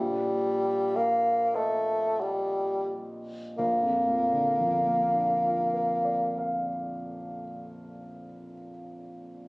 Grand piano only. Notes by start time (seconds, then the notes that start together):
Already playing: A#1
1.54 A#4 D#5
3.59 A#1
3.83 F2
4.07 A#2
4.32 D3
4.59 F3
4.86 A#3
5.14 D4
5.44 F4
5.74 A#4
6.05 D5
6.38 F5